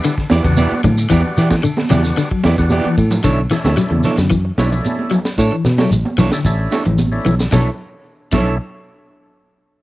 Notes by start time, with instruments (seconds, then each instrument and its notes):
Already playing: tonewheel organ G3 B3 D4 E4
0.04 clean electric guitar D3, snare, ride bell, high conga, shekere
0.18 muted clean electric guitar stroke, kick, snare
0.30 fingered electric bass E2, clean electric guitar B3 E4 G4 D5, snare, ride bell, high conga, shekere
0.43 fingered electric bass E2, clean electric guitar C#3, tonewheel organ G3 B3 D4 F#4, muted clean electric guitar stroke, kick, snare, ride bell, shekere
0.57 clean electric guitar B3 E4 G4 D5, ride bell, high conga, shekere
0.71 muted fingered electric bass stroke, high conga
0.84 fingered electric bass A2, clean electric guitar D3, muted clean electric guitar stroke, kick, ride bell, low conga, shekere
0.98 muted clean electric guitar stroke, ride bell, shekere
1.09 fingered electric bass E2, clean electric guitar E3 B3 E4 G4 D5, tonewheel organ G3 B3 D4 F#4, kick, ride bell, high conga, shekere
1.25 muted clean electric guitar stroke
1.37 fingered electric bass E3, clean electric guitar E4 G4 D5, muted clean electric guitar stroke, snare, ride bell, shekere
1.51 kick, snare, ride bell, high conga, shekere
1.63 clean electric guitar D3, muted clean electric guitar stroke, ride bell, high conga, shekere
1.77 snare, high conga
1.90 fingered electric bass E2, clean electric guitar C#3 B3 E4 G4 D5, tonewheel organ G3 B3 D4 F#4, open hi-hat, low conga, shekere
2.04 muted clean electric guitar stroke, snare, shekere
2.17 clean electric guitar D3, snare, ride bell, high conga, shekere
2.31 clean electric guitar F#3, muted clean electric guitar stroke, kick
2.44 fingered electric bass E2, clean electric guitar B3 E4 G4 D5, snare, ride bell, high conga, shekere
2.58 fingered electric bass E2, tonewheel organ G3 B3 D4 F#4, muted clean electric guitar stroke, kick, snare, shekere
2.70 clean electric guitar B3 E4 G4 D5, snare, ride bell, high conga, shekere
2.85 clean electric guitar E3, muted fingered electric bass stroke
2.97 fingered electric bass A2, muted clean electric guitar stroke, kick, ride bell, shekere
3.11 muted clean electric guitar stroke, low conga, shekere
3.23 fingered electric bass B1, clean electric guitar D3 D4 E4 A4 C#5, tonewheel organ A3 C#4 D4 E4, kick, closed hi-hat, shekere
3.50 clean electric guitar E3, tonewheel organ A3 C#4 D4 E4, muted clean electric guitar stroke, snare, closed hi-hat, shekere
3.64 fingered electric bass D2, clean electric guitar E4 A4 C#5, snare, high conga, shekere
3.77 clean electric guitar F#3, muted clean electric guitar stroke, snare, closed hi-hat, high conga, shekere
3.90 fingered electric bass E2, clean electric guitar C#3, muted clean electric guitar stroke, high conga
4.03 clean electric guitar D4 E4 A4 C#5, snare, open hi-hat, high conga, low conga, shekere
4.17 fingered electric bass F#2, clean electric guitar D3, snare, shekere
4.30 clean electric guitar E3, kick, closed hi-hat, high conga, shekere
4.45 muted clean electric guitar stroke
4.58 fingered electric bass B1, tonewheel organ A3 C#4 D4 E4, clean electric guitar D4 E4 C#5, snare, closed hi-hat, high conga, shekere
4.72 muted clean electric guitar stroke, low conga, shekere
4.84 closed hi-hat, high conga, shekere
4.99 high conga
5.11 clean electric guitar F#3, muted clean electric guitar stroke, closed hi-hat, low conga, shekere
5.25 muted clean electric guitar stroke, snare, shekere
5.38 fingered electric bass A2, clean electric guitar D4 E4 A4 C#5, kick, closed hi-hat, shekere
5.52 clean electric guitar E3
5.64 fingered electric bass B2, muted clean electric guitar stroke, snare, closed hi-hat, shekere
5.78 clean electric guitar F#3 E4 A4 C#5, snare, high conga, shekere
5.91 fingered electric bass A1, muted clean electric guitar stroke, closed hi-hat, high conga, shekere
6.05 muted clean electric guitar stroke, high conga
6.18 fingered electric bass B1, clean electric guitar E3 D4 E4 A4 C#5, snare, open hi-hat, low conga, shekere
6.32 clean electric guitar D3, tonewheel organ A3 C#4 D4 E4, muted clean electric guitar stroke, snare, closed hi-hat, shekere
6.45 fingered electric bass A1, tonewheel organ A3 C#4 D4 E4, kick, closed hi-hat, high conga, shekere
6.59 muted clean electric guitar stroke
6.71 clean electric guitar D4 E4 A4 C#5, snare, closed hi-hat, high conga, shekere
6.85 fingered electric bass A1, clean electric guitar E3, muted clean electric guitar stroke, low conga, shekere
6.98 closed hi-hat, high conga, shekere
7.12 tonewheel organ A3 C#4 D4 E4
7.25 fingered electric bass B1, clean electric guitar E3, muted clean electric guitar stroke, closed hi-hat, low conga, shekere
7.39 muted clean electric guitar stroke, snare, shekere
7.51 fingered electric bass B1, clean electric guitar B2 D4 E4 A4 C#5, tonewheel organ A3 C#4 D4 E4, kick, snare, low conga, shekere
8.32 fingered electric bass B1, clean electric guitar B2 D4 E4 A4 C#5, tonewheel organ A3 C#4 D4 E4, kick, crash, low conga, shekere